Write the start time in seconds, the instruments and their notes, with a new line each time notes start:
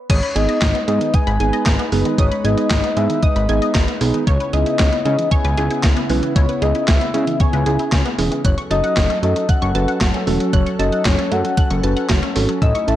0.09 analog synth bass G#1, analog synth pad G#3 D#4 B4, soft synth lead C#5, synth arpeggio sound D#6, kick, closed hi-hat, crash
0.23 synth arpeggio sound B5, closed hi-hat
0.35 analog synth bass G#1, tine electric piano B3 D#4 G#4, soft synth lead D#5, synth arpeggio sound G#5, closed hi-hat
0.49 synth arpeggio sound D#5, closed hi-hat
0.62 analog synth bass G#1, synth arpeggio sound D#4, kick, snare, clap, closed hi-hat
0.75 synth arpeggio sound B3, closed hi-hat
0.88 analog synth bass G#2, synth arpeggio sound G#3, tine electric piano B3 D#4 G#4, soft synth lead D#5, closed hi-hat
1.01 synth arpeggio sound D#3, closed hi-hat
1.14 soft synth lead G#5, synth arpeggio sound D#6, kick, closed hi-hat
1.27 analog synth bass G#1, synth arpeggio sound B5, closed hi-hat
1.40 analog synth bass G#1, tine electric piano B3 D#4 G#4, synth arpeggio sound G#5, closed hi-hat
1.53 synth arpeggio sound D#5, closed hi-hat
1.66 analog synth bass G#1, synth arpeggio sound D#4, kick, snare, clap, closed hi-hat
1.79 synth arpeggio sound B3, closed hi-hat
1.92 analog synth bass F#1, synth arpeggio sound G#3, tine electric piano B3 D#4 G#4, open hi-hat
2.05 synth arpeggio sound D#3, closed hi-hat
2.18 analog synth bass G#1, soft synth lead C#5, synth arpeggio sound D#6, kick, closed hi-hat
2.31 synth arpeggio sound B5, closed hi-hat
2.44 analog synth bass G#1, tine electric piano B3 D#4 G#4, soft synth lead D#5, synth arpeggio sound G#5, closed hi-hat
2.58 synth arpeggio sound D#5, closed hi-hat
2.71 analog synth bass G#1, synth arpeggio sound D#4, kick, snare, clap, closed hi-hat
2.84 synth arpeggio sound B3, closed hi-hat
2.96 analog synth bass G#2, synth arpeggio sound G#3, tine electric piano B3 D#4 G#4, soft synth lead E5, closed hi-hat
3.10 synth arpeggio sound D#3, closed hi-hat
3.22 soft synth lead D#5, synth arpeggio sound D#6, kick, closed hi-hat
3.36 analog synth bass G#1, synth arpeggio sound B5, closed hi-hat
3.49 analog synth bass G#1, tine electric piano B3 D#4 G#4, synth arpeggio sound G#5, closed hi-hat
3.62 synth arpeggio sound D#5, closed hi-hat
3.75 analog synth bass G#1, synth arpeggio sound D#4, kick, snare, clap, closed hi-hat
3.88 synth arpeggio sound B3, closed hi-hat
4.01 analog synth bass B1, synth arpeggio sound G#3, tine electric piano B3 D#4 G#4, open hi-hat
4.14 synth arpeggio sound D#3, closed hi-hat
4.27 analog synth bass C#2, analog synth pad C#3 B3 E4, soft synth lead C#5, synth arpeggio sound C#5, kick, closed hi-hat
4.40 synth arpeggio sound B4, closed hi-hat
4.53 analog synth bass C#2, tine electric piano C#4 E4 G#4, synth arpeggio sound G#4, soft synth lead D#5, closed hi-hat
4.66 synth arpeggio sound E4, closed hi-hat
4.79 analog synth bass C#2, synth arpeggio sound C#4, kick, snare, clap, closed hi-hat
4.92 synth arpeggio sound B3, closed hi-hat
5.05 analog synth bass C#3, synth arpeggio sound G#3, tine electric piano C#4 E4 G#4, soft synth lead D#5, closed hi-hat
5.19 synth arpeggio sound E3, closed hi-hat
5.31 synth arpeggio sound C#5, soft synth lead G#5, kick, closed hi-hat
5.45 analog synth bass C#2, synth arpeggio sound B4, closed hi-hat
5.57 analog synth bass C#2, tine electric piano C#4 E4 G#4, synth arpeggio sound G#4, closed hi-hat
5.71 synth arpeggio sound E4, closed hi-hat
5.84 analog synth bass C#2, synth arpeggio sound C#4, kick, snare, clap, closed hi-hat
5.97 synth arpeggio sound B3, closed hi-hat
6.10 analog synth bass B1, synth arpeggio sound G#3, tine electric piano C#4 E4 B4, open hi-hat
6.23 synth arpeggio sound E3, closed hi-hat
6.36 analog synth bass C#2, synth arpeggio sound C#5, soft synth lead C#5, kick, closed hi-hat
6.49 synth arpeggio sound B4, closed hi-hat
6.62 analog synth bass C#2, tine electric piano C#4 E4 G#4, synth arpeggio sound G#4, soft synth lead D#5, closed hi-hat
6.75 synth arpeggio sound E4, closed hi-hat
6.88 analog synth bass C#2, synth arpeggio sound C#4, soft synth lead E5, kick, snare, clap, closed hi-hat
7.01 synth arpeggio sound B3, closed hi-hat
7.14 analog synth bass C#3, synth arpeggio sound G#3, tine electric piano C#4 E4 G#4, closed hi-hat
7.27 synth arpeggio sound E3, closed hi-hat
7.40 synth arpeggio sound C#5, soft synth lead G#5, kick, closed hi-hat
7.53 analog synth bass C#2, synth arpeggio sound B4, closed hi-hat
7.66 analog synth bass C#2, tine electric piano C#4 E4 G#4, synth arpeggio sound G#4, closed hi-hat
7.79 synth arpeggio sound E4, closed hi-hat
7.92 analog synth bass C#2, synth arpeggio sound C#4, kick, snare, clap, closed hi-hat
8.06 synth arpeggio sound B3, closed hi-hat
8.18 analog synth bass E1, synth arpeggio sound G#3, tine electric piano C#4 E4 G#4, open hi-hat
8.31 synth arpeggio sound E3, closed hi-hat
8.45 analog synth bass F#1, analog synth pad F#3 C#4 A4, soft synth lead C#5, synth arpeggio sound F#6, kick, closed hi-hat
8.58 synth arpeggio sound C#6, closed hi-hat
8.71 analog synth bass F#1, tine electric piano C#4 F#4 A4, soft synth lead D#5, synth arpeggio sound A5, closed hi-hat
8.84 synth arpeggio sound F#5, closed hi-hat
8.97 analog synth bass F#1, synth arpeggio sound F#4, kick, snare, clap, closed hi-hat
9.10 synth arpeggio sound C#4, closed hi-hat
9.23 analog synth bass F#2, synth arpeggio sound A3, tine electric piano C#4 F#4 A4, soft synth lead D#5, closed hi-hat
9.36 synth arpeggio sound F#3, closed hi-hat
9.49 soft synth lead F#5, synth arpeggio sound F#6, kick, closed hi-hat
9.62 analog synth bass F#1, synth arpeggio sound C#6, closed hi-hat
9.75 analog synth bass F#1, tine electric piano C#4 F#4 B4, synth arpeggio sound A5, closed hi-hat
9.88 synth arpeggio sound F#5, closed hi-hat
10.01 analog synth bass F#1, synth arpeggio sound F#4, kick, snare, clap, closed hi-hat
10.14 synth arpeggio sound C#4, closed hi-hat
10.27 analog synth bass E1, synth arpeggio sound A3, tine electric piano C#4 F#4 A4, open hi-hat
10.40 synth arpeggio sound F#3, closed hi-hat
10.53 analog synth bass F#1, soft synth lead C#5, synth arpeggio sound F#6, kick, closed hi-hat
10.66 synth arpeggio sound C#6, closed hi-hat
10.79 analog synth bass F#1, tine electric piano C#4 F#4 A4, soft synth lead D#5, synth arpeggio sound A5, closed hi-hat
10.92 synth arpeggio sound F#5, closed hi-hat
11.05 analog synth bass F#1, synth arpeggio sound F#4, soft synth lead C#5, kick, snare, clap, closed hi-hat
11.18 synth arpeggio sound C#4, closed hi-hat
11.31 analog synth bass F#2, synth arpeggio sound A3, tine electric piano C#4 F#4 A4, soft synth lead F#5, closed hi-hat
11.44 synth arpeggio sound F#3, closed hi-hat
11.57 synth arpeggio sound F#6, kick, closed hi-hat
11.70 analog synth bass F#1, synth arpeggio sound C#6, closed hi-hat
11.83 analog synth bass F#1, tine electric piano C#4 F#4 B4, synth arpeggio sound A5, closed hi-hat
11.97 synth arpeggio sound F#5, closed hi-hat
12.10 analog synth bass F#1, synth arpeggio sound F#4, kick, snare, clap, closed hi-hat
12.23 synth arpeggio sound C#4, closed hi-hat
12.36 analog synth bass G#1, synth arpeggio sound A3, tine electric piano C#4 F#4 A4, open hi-hat
12.49 synth arpeggio sound F#3, closed hi-hat
12.62 analog synth bass A1, analog synth pad A3 E4, soft synth lead D#5, synth arpeggio sound E6, kick, closed hi-hat
12.75 synth arpeggio sound C#6, closed hi-hat
12.88 analog synth bass A1, tine electric piano C#4 E4 A4, soft synth lead E5, synth arpeggio sound A5, closed hi-hat